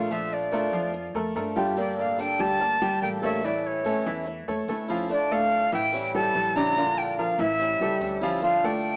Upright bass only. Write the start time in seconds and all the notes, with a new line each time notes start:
Already playing: A#1
0.73 F2
1.14 F2
1.35 G2
2.39 D2
3.02 A1
4.06 E2
4.48 E2
4.68 D2
5.72 A1
6.35 A#1
7.39 A1
7.80 C#2
8.01 D2